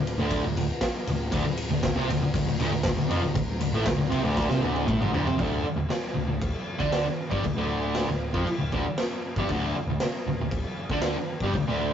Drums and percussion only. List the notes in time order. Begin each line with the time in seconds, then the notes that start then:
0.07 ride
0.31 kick, ride
0.57 ride
0.81 kick, snare, ride
1.07 ride
1.32 kick, ride
1.57 ride
1.83 kick, snare, ride
2.10 ride
2.34 kick, ride
2.60 ride
2.83 kick, snare, ride
3.11 ride
3.35 kick, ride
3.61 ride
3.86 kick, snare, ride
4.12 ride
4.37 kick, snare
4.50 snare
4.63 high tom
4.76 high tom
4.88 kick, mid tom
5.02 mid tom
5.14 floor tom
5.27 floor tom
5.39 kick, crash
5.90 snare, crash
6.42 kick, crash
6.80 kick
6.93 snare, crash
7.31 kick
7.44 kick, crash
7.95 snare, crash
8.34 kick
8.47 crash
8.72 kick
8.98 snare, crash
9.36 kick
9.49 kick, crash
10.00 snare, crash
10.51 kick, crash
10.90 kick
11.02 snare, crash
11.40 kick
11.54 kick, crash